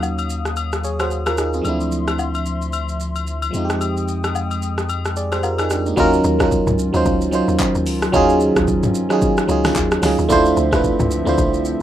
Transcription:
Already playing: sub bass D#2, fm electric piano F#3 A#3 C#4 D#4 F#4, analog synth pad F#3 F5 D#6
0.03 low woodblock, shaker
0.18 high agogo, shaker
0.30 shaker
0.45 cross-stick, shaker
0.57 high agogo, shaker
0.73 cross-stick, shaker
0.84 fm electric piano G#4 C#5, shaker
0.99 fm electric piano F#4 C5, cross-stick, high agogo, shaker
1.11 shaker
1.26 fm electric piano F4 A#4, cross-stick, high agogo, shaker
1.38 fm electric piano D#4 G#4, cross-stick, shaker
1.54 fm electric piano C4 F4, shaker
1.61 sub bass D2, fm electric piano F3 A3 C4, analog synth pad F3 E5 C6, high agogo, shaker
1.67 fm electric piano D4 E4
1.81 shaker
1.92 shaker
2.08 cross-stick, high agogo, shaker
2.19 low woodblock, shaker
2.35 high agogo, shaker
2.46 shaker
2.62 shaker
2.73 high agogo, shaker
2.89 shaker
3.00 shaker
3.16 high agogo, shaker
3.27 shaker
3.42 high agogo, shaker
3.51 sub bass F2, fm electric piano F3 G#3 C4, analog synth pad G#3 G5 D#6, shaker
3.56 fm electric piano D#4 F4
3.65 fm electric piano G4
3.70 cross-stick, shaker
3.81 high agogo, shaker
3.97 shaker
4.08 shaker
4.24 cross-stick, high agogo, shaker
4.35 low woodblock, shaker
4.51 high agogo, shaker
4.62 shaker
4.78 cross-stick, shaker
4.89 high agogo, shaker
5.05 cross-stick, shaker
5.17 fm electric piano G#4 D5, shaker
5.32 fm electric piano G4 C5, cross-stick, high agogo, shaker
5.43 fm electric piano F4 A#4, low woodblock, shaker
5.58 fm electric piano D#4 G#4, cross-stick, high agogo, shaker
5.70 fm electric piano D4 G4, cross-stick, shaker
5.86 fm electric piano A#3 D#4, shaker
5.96 log drum bass D#2, analog synth pad D#3 F#3 C#4 F4, fm electric piano F#3 C#4 D#4 F4 A#4, kick, shaker
6.13 shaker
6.24 log drum bass D#2, shaker
6.39 fm electric piano F#3 C#4 D#4 F4 A#4, kick, cross-stick, shaker
6.52 kick, shaker
6.67 log drum bass C#2, mid tom, shaker
6.79 shaker
6.93 log drum bass D#2, fm electric piano F#3 C#4 D#4 F4 C5, shaker
7.05 log drum bass C#2, kick, shaker
7.21 shaker
7.31 fm electric piano F#3 C#4 D#4 F4 C5, shaker
7.48 log drum bass D#2, shaker
7.60 kick, clap, shaker
7.75 log drum bass D#2, shaker
7.86 log drum bass C#2, open hi-hat, shaker
8.02 cross-stick, shaker
8.12 log drum bass D#2, fm electric piano F#3 C#4 D#4 F4 G#4, kick, shaker
8.29 shaker
8.40 shaker
8.56 log drum bass D#2, kick, cross-stick, shaker
8.68 kick, shaker
8.83 mid tom, shaker
8.95 shaker
9.09 fm electric piano F#3 C#4 D#4 F4 G#4, cross-stick, shaker
9.22 kick, shaker
9.37 cross-stick, shaker
9.47 log drum bass C#2, fm electric piano F#3 C#4 D#4 F4 G#4, shaker
9.65 cross-stick, snare, shaker
9.76 log drum bass D#2, kick, clap, shaker
9.92 cross-stick, shaker
10.02 log drum bass C#2, fm electric piano F#3 C#4 D#4 F4 G#4, cross-stick, snare, open hi-hat, shaker
10.18 log drum bass D#2, shaker
10.29 log drum bass D2, analog synth pad D3 F3 C4 E5, fm electric piano A3 D4 E4 F4 C5, kick, shaker
10.46 shaker
10.57 log drum bass D2, shaker
10.71 fm electric piano A3 D4 E4 F4 B4, kick, cross-stick, shaker
10.84 kick, shaker
11.00 log drum bass C#2, mid tom, shaker
11.11 shaker
11.25 log drum bass D2, fm electric piano A3 D4 E4 F4 C5, shaker
11.38 log drum bass C2, kick, shaker
11.54 shaker
11.65 shaker

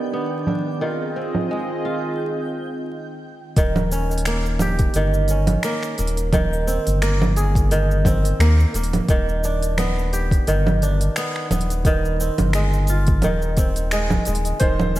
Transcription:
Already playing: kora D#3 B3 D4 G4, analog synth pad D#3 B3 D4 G4 D5, synth texture G5
0.13 kora B3
0.33 cabasa
0.47 kora D4, low conga, cabasa
0.67 cabasa
0.81 kora D#3 F4, analog synth pad C4 F4 G#4 D#5, cabasa
1.01 cabasa
1.16 kora C4, cabasa
1.35 low conga, cabasa
1.50 kora G#3, cabasa
1.69 cabasa
1.84 kora F4, cabasa
2.04 cabasa
3.57 analog synth bass D#1, kora D#3, kick, open hi-hat, cabasa
3.76 low conga, cabasa
3.92 kora C#4, cabasa
4.11 cabasa
4.18 open hi-hat
4.25 kora A#3, finger snap, open hi-hat, cabasa
4.46 cabasa
4.59 kora G4, open hi-hat, low conga, cabasa
4.79 kick, open hi-hat, cabasa
4.94 analog synth bass G1, kora D#3, open hi-hat, cabasa
5.14 cabasa
5.28 kora C#4, open hi-hat, cabasa
5.47 open hi-hat, low conga, cabasa
5.63 kora A#3, finger snap, open hi-hat, cabasa
5.83 finger snap, cabasa
5.98 analog synth bass D#1, kora A#3, open hi-hat, cabasa
6.07 open hi-hat
6.17 open hi-hat, cabasa
6.33 kora D#3, kick, open hi-hat, low conga, cabasa
6.53 cabasa
6.67 kora C4, cabasa
6.87 analog synth bass G1, open hi-hat, cabasa
7.02 kora A#3, finger snap, open hi-hat, cabasa
7.22 low conga, cabasa
7.36 kora G#4, open hi-hat, cabasa
7.55 kick, open hi-hat, cabasa
7.71 kora D#3, open hi-hat, cabasa
7.91 cabasa
8.05 kora C4, kick, open hi-hat, low conga, cabasa
8.25 open hi-hat, cabasa
8.39 analog synth bass D#2, kora A#3, finger snap, open hi-hat, cabasa
8.60 cabasa
8.74 analog synth bass D#1, kora A#3, open hi-hat, cabasa
8.84 open hi-hat
8.93 open hi-hat, low conga, cabasa
9.09 analog synth bass D#1, kora D#3, kick, open hi-hat, cabasa
9.29 cabasa
9.44 kora D4, cabasa
9.62 open hi-hat, cabasa
9.78 kora B3, finger snap, open hi-hat, low conga, cabasa
9.99 cabasa
10.13 kora G4, open hi-hat, cabasa
10.31 kick, open hi-hat, cabasa
10.47 analog synth bass G1, kora D#3, open hi-hat, cabasa
10.67 low conga, cabasa
10.82 kora D4, open hi-hat, cabasa
11.01 open hi-hat, cabasa
11.16 kora B3, finger snap, open hi-hat, cabasa
11.36 finger snap
11.51 analog synth bass D#1, kora B3, open hi-hat, low conga, cabasa
11.61 open hi-hat
11.70 open hi-hat, cabasa
11.85 kora D#3, kick, open hi-hat, cabasa
12.05 cabasa
12.20 kora C4, cabasa
12.38 analog synth bass G1, open hi-hat, low conga, cabasa
12.53 kora G#3, finger snap, open hi-hat, cabasa
12.73 cabasa
12.87 kora F4, open hi-hat, cabasa
13.07 kick, open hi-hat, cabasa
13.22 analog synth bass D#1, kora D#3, open hi-hat, low conga, cabasa
13.42 cabasa
13.57 kora C4, kick, open hi-hat, cabasa
13.76 open hi-hat, cabasa
13.91 kora G#3, finger snap, open hi-hat, cabasa
14.10 kick, low conga, cabasa
14.25 analog synth bass D#1, kora G#3, open hi-hat, cabasa
14.35 open hi-hat
14.45 open hi-hat, cabasa
14.60 analog synth bass D#1, kora D#3, felt piano C5, kick, open hi-hat, cabasa
14.80 low conga, cabasa
14.96 kora C#4, cabasa

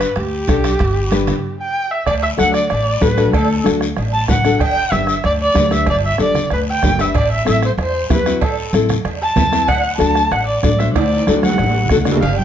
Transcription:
Already playing: erhu B4
0.01 bombo rim, high timbale, short guiro
0.16 upright bass D2, bombo rim, high conga, high timbale, long guiro
0.20 erhu G4
0.48 upright bass B1, nylon-string guitar D4 G4 A4, bombo low, bombo rim, high conga, high timbale, short guiro
0.64 bombo rim, high timbale, short guiro
0.79 upright bass G1, bombo low, bombo rim, high conga, high timbale, long guiro
1.11 nylon-string guitar D4 G4 B4, bombo rim, high conga, high timbale, short guiro
1.27 bombo rim, low conga, high timbale, short guiro
1.61 erhu G5
1.91 erhu E5
2.06 upright bass D2, erhu D5, bombo low, bombo rim, cowbell, high conga, long guiro
2.23 erhu E5
2.37 upright bass D2, nylon-string guitar D4 F#4 A4, erhu F#5, bombo rim, high conga, short guiro
2.54 erhu D5, bombo rim, short guiro
2.70 upright bass A1, erhu D5, bombo rim, cowbell, high conga, long guiro
3.01 upright bass A1, nylon-string guitar D4 F#4 A4, erhu B4, bombo low, bombo rim, high conga, low timbale, short guiro
3.17 nylon-string guitar D4 F#4 A4, bombo rim, short guiro
3.33 upright bass D2, erhu A4, bombo low, bombo rim, cowbell, high conga, long guiro
3.64 upright bass D2, nylon-string guitar D4 F#4 A4, bombo rim, high conga, short guiro
3.81 bombo rim, short guiro
3.97 upright bass A1, bombo rim, cowbell, high conga, long guiro
4.13 erhu A5
4.28 upright bass A1, nylon-string guitar D4 F#4 B4, erhu F#5, bombo low, bombo rim, high conga, low conga, short guiro
4.44 nylon-string guitar D4 F#4 A4, bombo rim, short guiro
4.60 upright bass G1, erhu G5, bombo low, bombo rim, cowbell, high conga, long guiro
4.91 upright bass G1, nylon-string guitar D4 G4 B4, erhu E5, bombo rim, high conga, short guiro
5.07 bombo rim, short guiro
5.24 upright bass D2, erhu D5, bombo rim, cowbell, high conga, long guiro
5.42 erhu D5
5.54 upright bass D2, nylon-string guitar D4 G4 B4, bombo low, bombo rim, high conga, low timbale, short guiro
5.70 nylon-string guitar D4 G4 B4, erhu E5, bombo rim, short guiro
5.86 upright bass G1, erhu D5, bombo low, bombo rim, cowbell, high conga, long guiro
6.07 erhu E5
6.18 upright bass G1, nylon-string guitar D4 G4 A4, bombo rim, high conga, short guiro
6.23 erhu D5
6.35 bombo rim, low conga, short guiro
6.50 upright bass D2, erhu B4, bombo rim, cowbell, high conga, long guiro
6.70 erhu G5
6.83 upright bass G1, nylon-string guitar D4 G4 B4, bombo low, bombo rim, high conga, low conga, low timbale, short guiro
6.99 nylon-string guitar D4 G4 B4, erhu E5, bombo rim, short guiro
7.15 upright bass A1, erhu D5, bombo low, bombo rim, cowbell, high conga, long guiro
7.32 erhu E5
7.45 upright bass A1, nylon-string guitar C4 E4 A4, erhu E5, bombo rim, high conga, short guiro
7.63 erhu C5, bombo rim, short guiro
7.78 upright bass E2, erhu C5, bombo rim, cowbell, high conga, long guiro
8.10 upright bass E2, nylon-string guitar C4 E4 G4, erhu B4, bombo low, bombo rim, high conga, low timbale, short guiro
8.26 nylon-string guitar C4 E4 F#4, bombo rim, short guiro
8.41 upright bass A1, erhu A4, bombo low, bombo rim, cowbell, high conga, long guiro
8.73 upright bass A1, nylon-string guitar C4 E4 A4, bombo rim, high conga, short guiro
8.89 bombo rim, low conga, short guiro
9.05 upright bass E2, bombo rim, cowbell, high conga, long guiro
9.22 erhu A5
9.36 upright bass E2, nylon-string guitar C4 E4 B4, bombo low, bombo rim, high conga, low conga, short guiro
9.52 nylon-string guitar C4 E4 B4, bombo rim, short guiro
9.68 upright bass D2, erhu F#5, bombo low, bombo rim, cowbell, high conga, long guiro
9.98 upright bass D2, nylon-string guitar D4 F#4 A4, erhu A5, bombo rim, high conga, short guiro
10.15 bombo rim, short guiro
10.31 upright bass A1, erhu F#5, bombo rim, cowbell, high conga, long guiro
10.47 erhu D5
10.63 upright bass A1, nylon-string guitar D4 F#4 A4, erhu D5, bombo low, bombo rim, high conga, short guiro
10.79 nylon-string guitar D4 F#4 C5, erhu E5, bombo rim, short guiro
10.94 upright bass D2, erhu D5, bombo low, bombo rim, cowbell, high conga, high timbale, long guiro
11.17 high timbale
11.27 upright bass D2, nylon-string guitar D4 F#4 A4, bombo rim, high conga, high timbale, short guiro
11.43 erhu F#5, bombo rim, high conga, short guiro
11.48 low timbale
11.54 bombo rim, high conga
11.59 upright bass A1, cowbell, long guiro
11.64 high conga
11.69 low timbale
11.86 bombo rim, low conga
11.90 upright bass D2, nylon-string guitar D4 F#4 A4, bombo low, short guiro
11.97 low conga
12.05 nylon-string guitar D4 F#4 C5, bombo rim, low conga, short guiro
12.12 low timbale
12.17 low conga
12.21 upright bass G1, erhu F5, cowbell, high conga, long guiro
12.39 erhu G5, high conga

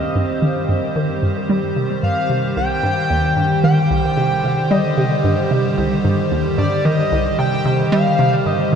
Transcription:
Already playing: synth arpeggio sound D#2, ambient pad D#3 G3 C4 G4 C5, analog synth lead D#5
0.15 synth arpeggio sound G2
0.42 synth arpeggio sound D#3
0.69 synth arpeggio sound G2
0.96 synth arpeggio sound D#3
1.23 synth arpeggio sound G2
1.49 synth arpeggio sound G3
1.76 synth arpeggio sound C3
2.03 synth arpeggio sound G2, analog synth lead F5
2.30 synth arpeggio sound C3
2.57 synth arpeggio sound C2, analog synth lead G5
2.83 synth arpeggio sound G2
3.10 synth arpeggio sound D#2
3.15 ambient pad D3
3.37 synth arpeggio sound G2
3.64 synth arpeggio sound D#3, analog synth lead G5
3.90 synth arpeggio sound C2
4.17 synth arpeggio sound C3
4.44 synth arpeggio sound C3
4.71 synth arpeggio sound G3, analog synth lead D#5
4.98 synth arpeggio sound C3
5.24 synth arpeggio sound G2
5.51 synth arpeggio sound C3
5.78 synth arpeggio sound C2
6.05 synth arpeggio sound G2
6.31 synth arpeggio sound D#2
6.58 synth arpeggio sound G2, analog synth lead D5
6.85 synth arpeggio sound D#3, analog synth lead D#5
7.12 synth arpeggio sound C2
7.39 synth arpeggio sound C3, analog synth lead G5
7.65 synth arpeggio sound C3
7.92 synth arpeggio sound G3, analog synth lead F5
8.19 synth arpeggio sound C3
8.46 synth arpeggio sound G2, analog synth lead D#5

